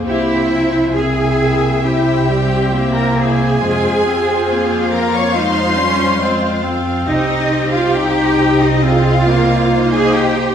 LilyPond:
<<
  \new Staff \with { instrumentName = "Violin section" } { \time 4/4 \key c \phrygian \tempo 4 = 68 e''4 aes''4 g''4~ g''16 bes''16 aes''8~ | aes''4. bes''16 des'''16 c'''4. r8 | ees''8. f''16 g''8. ees''16 f''4~ f''16 aes''16 g''8 | }
  \new Staff \with { instrumentName = "Violin section" } { \time 4/4 \key c \phrygian c''4 e''2 e''4 | c''4 f''2 f''4 | ees''4 ees''2 ees''4 | }
  \new Staff \with { instrumentName = "Cello section" } { \time 4/4 \key c \phrygian e'4 aes'4 g'4~ g'16 bes'16 aes'8~ | aes'4. bes'16 des''16 c''4. r8 | ees'8. f'16 g'8. ees'16 f'4~ f'16 aes'16 g'8 | }
  \new Staff \with { instrumentName = "Viola section" } { \time 4/4 \key c \phrygian << { g'8 f8 e'4 e'8 g'8 e'4 | f'1 | g'2 aes'8 bes'8 c''4 | } \\ { c'4 bes8 bes8 c'2 | c'8 c'4. ees'8 des'8 c'8 c'8~ | c'2. ees'4 | } >> }
  \new Staff \with { instrumentName = "Clarinet" } { \time 4/4 \key c \phrygian bes8 r8 c'4 e'8 g8 bes4 | aes8 c'8 bes4 aes8 g8 aes8 c'8~ | c'8 r8 ees'4 c'8 bes4. | }
  \new Staff \with { instrumentName = "Double bass section" } { \clef bass \time 4/4 \key c \phrygian c,1 | f,1 | c,1 | }
>>